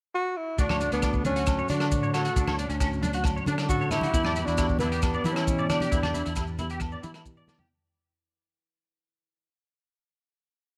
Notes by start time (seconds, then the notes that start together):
0.15 F#4
0.37 E4
0.58 D2 D3 D4 F#4, kick, closed hi-hat, maracas
0.69 C#5, cross-stick, high conga, low agogo
0.80 A3 D4, closed hi-hat, maracas
0.92 D2 B3 D4, closed hi-hat, maracas
1.02 D4 F#4, kick, cross-stick, closed hi-hat, low agogo, maracas
1.13 kick, maracas
1.25 F#3 C#4 D4 F#4, closed hi-hat, high conga, low conga, maracas
1.36 F#4, closed hi-hat
1.46 F#4, kick, cross-stick, closed hi-hat, low agogo, maracas
1.58 C#5, maracas
1.68 D3 D4 F#4, closed hi-hat, high conga, maracas
1.80 D4, cross-stick, closed hi-hat, low agogo
1.92 A2 F#4, kick, closed hi-hat, maracas
2.03 C#5, maracas
2.14 F#4 A4 C#5, cross-stick, closed hi-hat, low agogo, maracas
2.25 F#4, closed hi-hat
2.36 D2 D3 D4, kick, closed hi-hat, maracas
2.48 C#5, cross-stick, high conga, low agogo
2.59 C#4 D4, closed hi-hat, maracas
2.69 D2 C#4, closed hi-hat, maracas
2.80 C#4 F#4, kick, cross-stick, closed hi-hat, low agogo, maracas
2.93 maracas
3.03 F#3 D4, closed hi-hat, high conga, low conga, maracas
3.13 F#4, closed hi-hat
3.24 F#4, kick, cross-stick, closed hi-hat, low agogo, maracas
3.36 C#5, maracas
3.46 D3 D4, closed hi-hat, high conga, maracas
3.58 D4, cross-stick, closed hi-hat, low agogo
3.69 A2 D4 F#4 A4, kick, closed hi-hat, maracas
3.81 C#5, maracas
3.91 E4 G4 C#5, cross-stick, closed hi-hat, low conga, low agogo, maracas
4.01 F#4, closed hi-hat, high conga
4.14 E2 E3 E4, kick, closed hi-hat, maracas
4.24 D5, cross-stick, high conga, low agogo
4.36 B3 E4, closed hi-hat, maracas
4.46 E2 D4 E4 F#4, closed hi-hat, maracas
4.57 E4 G4, kick, cross-stick, closed hi-hat, low agogo, maracas
4.69 kick, maracas
4.79 B3 D4 E4, closed hi-hat, high conga, low conga, maracas
4.92 G4, closed hi-hat
5.02 G4, kick, cross-stick, closed hi-hat, low agogo, maracas
5.14 D5, maracas
5.24 E3 E4 G4, closed hi-hat, high conga, maracas
5.34 C#4 E4, cross-stick, closed hi-hat, low agogo
5.47 B2 G4, kick, closed hi-hat, maracas
5.58 D5, maracas
5.69 D4 G4 D5, cross-stick, closed hi-hat, low conga, low agogo, maracas
5.80 G4, closed hi-hat, high conga
5.91 E2 E3 E4, kick, closed hi-hat, maracas
6.03 D5, cross-stick, high conga, low agogo, maracas
6.14 D4 E4, closed hi-hat, low conga, maracas
6.25 E2 E4, closed hi-hat, maracas
6.36 E4 G4, kick, cross-stick, closed hi-hat, low agogo, maracas
6.47 maracas
6.59 B3 E4 G4, closed hi-hat, high conga, low conga, maracas
6.70 G4, closed hi-hat, maracas
6.80 muted steel-string acoustic guitar stroke, kick, cross-stick, closed hi-hat, low agogo, maracas
6.92 D5, maracas
7.03 E3 E4 G4, closed hi-hat, high conga, maracas
7.14 E4, cross-stick, closed hi-hat, low agogo, maracas
7.25 B2 G4, kick, closed hi-hat, low conga, maracas
7.37 D5, maracas
7.47 D5, snare, low conga, low agogo, maracas
7.58 G4, floor tom, high conga, maracas